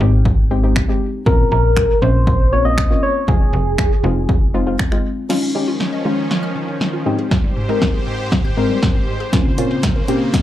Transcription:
0.00 fm bass G#1, synth pluck G#3 C4 D#4 G4
0.25 kick
0.50 synth pluck G#3 C4 D#4 G4
0.63 synth pluck G#3 C4 D#4 G4
0.76 finger snap, kick
0.88 synth pluck G#3 C4 D#4 G4
1.26 fm bass A#1, synth pluck A#3 C4 C#4 F4, soft synth lead A#4, kick
1.52 fm bass A#1, soft synth lead A#4
1.77 finger snap, kick
2.02 fm bass A#1, synth pluck A#3 C4 C#4 F4, soft synth lead C5
2.27 kick
2.52 synth pluck A#3 C4 C#4 F4, soft synth lead C#5
2.65 synth pluck A#3 C4 C#4 F4, soft synth lead D#5
2.78 finger snap, kick
2.90 synth pluck A#3 C4 C#4 F4
3.03 soft synth lead C#5
3.28 fm bass F1, synth pluck G#3 C4 D#4 F4, soft synth lead G#4, kick
3.53 fm bass F1
3.78 finger snap, kick
4.03 fm bass F1, synth pluck G#3 C4 D#4 F4
4.29 kick
4.54 synth pluck G#3 C4 D#4 F4
4.66 synth pluck G#3 C4 D#4 F4
4.79 finger snap, kick
4.91 synth pluck G#3 C4 D#4 F4, finger snap
5.29 supersaw synth D#3 F3 C#4, synth arpeggio sound D#3, synth pluck G#3 C#4 D#4 F4, snare, crash
5.42 synth arpeggio sound C#4
5.55 synth arpeggio sound D#3, synth pluck G#3 C#4 D#4 G4
5.68 synth arpeggio sound F4
5.80 synth arpeggio sound D#3, snare
5.93 synth arpeggio sound D#5
6.05 synth arpeggio sound D#3, synth pluck G#3 C#4 D#4 F4
6.30 synth arpeggio sound D#3, snare
6.43 synth arpeggio sound F6
6.56 synth arpeggio sound D#3
6.68 synth arpeggio sound C#4
6.81 synth arpeggio sound D#3, snare
6.93 synth arpeggio sound F4
7.06 synth arpeggio sound G#2, supersaw synth G#2 G4 C5, synth pluck G#3 C4 D#4 G4
7.19 synth arpeggio sound G#4
7.31 synth arpeggio sound G#2, kick, snare
7.44 synth arpeggio sound G3
7.56 synth arpeggio sound G#2
7.69 synth pluck G#3 C4 D#4 A#4, synth arpeggio sound C4
7.81 synth arpeggio sound G#2, kick, snare
7.94 synth arpeggio sound G#4
8.07 synth arpeggio sound G#2
8.32 synth arpeggio sound G#2, kick, snare
8.45 synth arpeggio sound G6
8.57 synth arpeggio sound G#2, synth pluck G#3 C4 D#4 A#4
8.70 synth arpeggio sound G3
8.83 synth arpeggio sound G#2, kick, snare
8.95 synth arpeggio sound C4
9.08 synth arpeggio sound G#2
9.20 synth arpeggio sound G#4
9.32 synth arpeggio sound A#2, supersaw synth C#3 A#3, synth pluck A#3 C4 C#4 F4, kick, snare, closed hi-hat
9.45 synth arpeggio sound C#3
9.58 synth arpeggio sound A#2, synth pluck A#3 C4 C#4 F4, closed hi-hat
9.71 synth arpeggio sound C4
9.83 synth arpeggio sound A#2, kick, snare, closed hi-hat
9.96 synth arpeggio sound A#4
10.08 synth arpeggio sound A#2, synth pluck A#3 C4 C#4 G4, closed hi-hat
10.34 synth arpeggio sound A#2, kick, snare, closed hi-hat

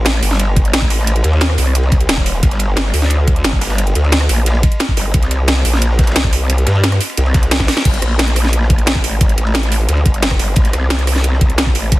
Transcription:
Already playing: wobble bass A1
0.05 snare, closed hi-hat, ride
0.14 snare
0.22 wobble bass G1, open hi-hat, ride
0.31 snare, ride
0.39 closed hi-hat, ride
0.56 kick, closed hi-hat, ride
0.65 closed hi-hat
0.73 wobble bass A1, snare, closed hi-hat, ride
0.82 kick
0.90 open hi-hat, ride
0.99 snare
1.07 closed hi-hat, ride
1.16 closed hi-hat
1.24 wobble bass D#2, closed hi-hat, ride
1.33 ride
1.41 snare, closed hi-hat, ride
1.50 cross-stick, snare
1.58 wobble bass C2, open hi-hat, ride
1.67 ride
1.75 closed hi-hat, ride
1.83 ride
1.92 kick, closed hi-hat, ride
2.01 closed hi-hat
2.09 wobble bass D#1, snare, closed hi-hat, ride
2.17 kick, snare
2.26 open hi-hat, ride
2.34 snare
2.43 wobble bass G1, kick, closed hi-hat, ride
2.51 snare, closed hi-hat
2.59 closed hi-hat, ride
2.76 snare, closed hi-hat, ride
2.86 snare
2.93 wobble bass D2, open hi-hat, ride
3.02 snare, ride
3.10 closed hi-hat, ride
3.27 kick, closed hi-hat, ride
3.36 closed hi-hat
3.44 wobble bass G1, snare, closed hi-hat, ride
3.53 kick
3.61 snare, open hi-hat, ride
3.70 snare, ride
3.78 closed hi-hat, ride
3.87 closed hi-hat
3.95 wobble bass D2, closed hi-hat, ride
4.04 ride
4.12 snare, closed hi-hat, ride
4.21 cross-stick, snare
4.29 wobble bass A#1, open hi-hat, ride
4.37 ride
4.46 closed hi-hat, ride
4.55 ride
4.63 kick, closed hi-hat, ride
4.72 closed hi-hat
4.80 snare, closed hi-hat, ride
4.89 kick, snare
4.97 wobble bass G1, snare, open hi-hat, ride
5.14 wobble bass C2, kick, closed hi-hat, ride
5.23 snare, closed hi-hat
5.31 closed hi-hat, ride
5.48 snare, closed hi-hat, ride
5.57 snare
5.65 wobble bass A#1, open hi-hat, ride
5.73 snare, ride
5.81 closed hi-hat, ride
5.91 snare
5.99 kick, snare, closed hi-hat, ride
6.03 snare, ride
6.07 snare, closed hi-hat, ride
6.12 snare, ride
6.15 wobble bass C2, snare, closed hi-hat, ride
6.24 kick
6.33 open hi-hat, ride
6.50 closed hi-hat, ride
6.58 closed hi-hat
6.67 wobble bass G2, snare, closed hi-hat, ride
6.75 ride
6.84 snare, closed hi-hat, ride
6.92 cross-stick, snare, closed hi-hat
7.01 open hi-hat, ride
7.10 ride
7.17 wobble bass C2, closed hi-hat, ride
7.26 ride
7.34 kick, snare, closed hi-hat, ride
7.43 snare, closed hi-hat
7.51 snare, closed hi-hat, ride
7.60 kick, snare, ride
7.67 snare, open hi-hat, ride
7.77 snare, ride
7.81 snare, ride
7.85 wobble bass G1, kick, closed hi-hat, crash, ride
7.94 snare, closed hi-hat
8.02 wobble bass A#1, cross-stick, closed hi-hat, ride
8.19 snare, closed hi-hat, ride
8.28 snare, closed hi-hat
8.35 cross-stick, open hi-hat, ride
8.44 snare, ride
8.53 closed hi-hat, ride
8.61 snare
8.70 kick, closed hi-hat, ride
8.78 closed hi-hat
8.86 snare, closed hi-hat, ride
8.95 wobble bass A1, kick, snare
9.04 open hi-hat, ride
9.12 ride
9.21 wobble bass G#1, kick, closed hi-hat, ride
9.29 closed hi-hat
9.38 wobble bass A1, closed hi-hat, ride
9.47 ride
9.54 snare, closed hi-hat, ride
9.63 snare, closed hi-hat
9.72 open hi-hat, ride
9.81 ride
9.89 wobble bass D2, closed hi-hat, ride
9.97 ride
10.06 wobble bass G1, kick, closed hi-hat, ride
10.14 closed hi-hat
10.22 snare, closed hi-hat, ride
10.31 kick, cross-stick, snare
10.39 wobble bass G1, snare, open hi-hat, ride
10.56 wobble bass A1, kick, closed hi-hat, ride
10.65 snare, closed hi-hat
10.73 wobble bass C2, cross-stick, closed hi-hat, ride
10.90 snare, closed hi-hat, ride
10.99 snare, closed hi-hat
11.07 cross-stick, open hi-hat, ride
11.16 snare, ride
11.24 closed hi-hat, ride
11.33 snare
11.41 kick, closed hi-hat, ride
11.50 closed hi-hat
11.58 snare, closed hi-hat, ride
11.67 wobble bass A#1, kick
11.75 open hi-hat, ride
11.92 kick, closed hi-hat, ride

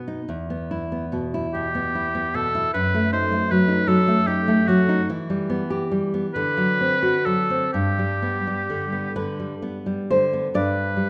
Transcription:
Already playing: nylon-string guitar B2 B3
0.08 nylon-string guitar D#4
0.29 nylon-string guitar E2
0.50 nylon-string guitar B3
0.71 nylon-string guitar E4
0.92 nylon-string guitar B3
1.12 nylon-string guitar B2
1.34 nylon-string guitar E4
1.53 nylon-string guitar B2, oboe G4
1.75 nylon-string guitar B3
1.95 nylon-string guitar E4
2.15 nylon-string guitar B3
2.34 nylon-string guitar B2, oboe A4
2.55 nylon-string guitar E4
2.74 nylon-string guitar F#2, oboe B4
2.94 nylon-string guitar A3
3.13 nylon-string guitar D#4, oboe C5
3.32 nylon-string guitar A3
3.51 nylon-string guitar F#3, oboe B4
3.68 nylon-string guitar D#4
3.87 nylon-string guitar F#3, oboe A4
4.08 nylon-string guitar A3
4.27 nylon-string guitar D#4, oboe G4
4.48 nylon-string guitar A3
4.67 nylon-string guitar F#3, oboe F#4
4.89 nylon-string guitar D#4
5.10 nylon-string guitar E3
5.30 nylon-string guitar G3
5.50 nylon-string guitar B3
5.70 nylon-string guitar G4
5.91 nylon-string guitar G3
6.14 nylon-string guitar B3
6.34 nylon-string guitar D3, oboe B4
6.57 nylon-string guitar F#3
6.81 nylon-string guitar C4
7.02 nylon-string guitar F#4
7.26 nylon-string guitar F#3, oboe A4
7.50 nylon-string guitar C4
7.73 nylon-string guitar G2, oboe G4
7.99 nylon-string guitar G3
8.22 nylon-string guitar B3
8.47 nylon-string guitar G3
8.70 nylon-string guitar D3
8.92 nylon-string guitar B3
9.16 nylon-string guitar D3 B4
9.39 nylon-string guitar G3
9.62 nylon-string guitar B3
9.86 nylon-string guitar G3
10.10 nylon-string guitar D3 C5
10.33 nylon-string guitar B3
10.54 nylon-string guitar G2 D5, oboe B4
10.97 nylon-string guitar G3

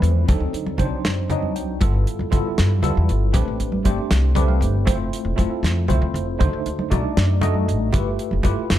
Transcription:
Already playing: tine electric piano F3 A3 C4 E4 B4
0.02 upright bass E2, closed hi-hat
0.28 upright bass D2, tine electric piano F#3 C4 D4 D#4 A4, kick, closed hi-hat, muted conga, low conga
0.40 upright bass D2, low conga
0.53 upright bass D2, closed hi-hat
0.66 high conga
0.78 upright bass C2, tine electric piano F#3 C4 D4 D#4 C5, kick, closed hi-hat, muted conga, low conga
1.05 upright bass F#2, snare, closed hi-hat
1.17 low conga
1.30 tine electric piano F#3 C4 D4 D#4 F#4 D#5, closed hi-hat, low conga
1.42 high conga
1.56 upright bass C2, tine electric piano G5, closed hi-hat
1.80 upright bass G1, tine electric piano G3 B3 E4 F4 A4, kick, closed hi-hat, muted conga, low conga
1.95 low conga
2.07 closed hi-hat
2.19 upright bass F1, high conga
2.31 upright bass G1, tine electric piano G3 B3 E4 F4 A4, kick, closed hi-hat, muted conga, low conga
2.45 muted upright bass stroke
2.58 upright bass G2, snare, closed hi-hat
2.70 low conga
2.82 upright bass D2, tine electric piano G3 B3 E4 F4 A4, closed hi-hat, muted conga, low conga
2.95 upright bass E2, high conga
3.09 upright bass G1, closed hi-hat
3.33 upright bass A1, tine electric piano A3 C4 D4 G4 B4, kick, closed hi-hat, muted conga, low conga
3.48 upright bass A1
3.59 upright bass A1, closed hi-hat, low conga
3.72 high conga
3.84 upright bass G1, tine electric piano A3 C4 D4 G4 C5, kick, closed hi-hat, muted conga
3.98 low conga
4.11 upright bass C2, snare, closed hi-hat, low conga
4.35 tine electric piano A3 C4 D4 G4 B4 D5, closed hi-hat, muted conga, low conga
4.48 tine electric piano F5, high conga, low conga
4.60 upright bass G1, tine electric piano G5, closed hi-hat
4.75 low conga
4.85 upright bass F1, tine electric piano A3 C4 E4 F4 C5, kick, closed hi-hat, muted conga, low conga
5.00 low conga
5.13 closed hi-hat
5.25 upright bass E1
5.36 upright bass F1, tine electric piano A3 C4 E4 F4 A4, kick, closed hi-hat, muted conga
5.50 muted upright bass stroke
5.63 upright bass F2, snare, closed hi-hat
5.88 upright bass C2, tine electric piano A3 C4 E4 F4 C5, closed hi-hat, muted conga, low conga
6.02 upright bass D2, high conga
6.14 upright bass F1, closed hi-hat
6.39 upright bass D2, tine electric piano A3 D4 D#4 F#4 C5, kick, closed hi-hat, muted conga, low conga
6.53 upright bass D2, low conga
6.66 upright bass D2, closed hi-hat
6.79 high conga
6.90 upright bass C2, tine electric piano A3 D4 D#4 F#4 D5, kick, closed hi-hat, muted conga, low conga
7.17 upright bass F#2, snare, closed hi-hat
7.30 low conga
7.41 tine electric piano A3 D4 D#4 F#4 D#5, closed hi-hat, muted conga, low conga
7.54 high conga
7.68 upright bass A1, closed hi-hat
7.92 upright bass G1, tine electric piano A3 E4 F4 G4 B4, kick, closed hi-hat, muted conga, low conga
8.06 low conga
8.19 closed hi-hat
8.31 upright bass F1, high conga
8.43 upright bass G1, tine electric piano A3 E4 F4 G4 B4, kick, closed hi-hat, muted conga, low conga
8.59 muted upright bass stroke
8.70 upright bass G2, snare, closed hi-hat

